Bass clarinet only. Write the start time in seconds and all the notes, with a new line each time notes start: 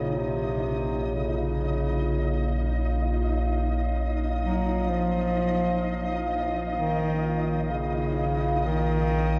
Already playing: C#3
0.17 C3
1.15 C#3
4.43 F#3
4.89 F3
6.77 D#3
7.63 D#3
7.70 C#3
8.66 D#3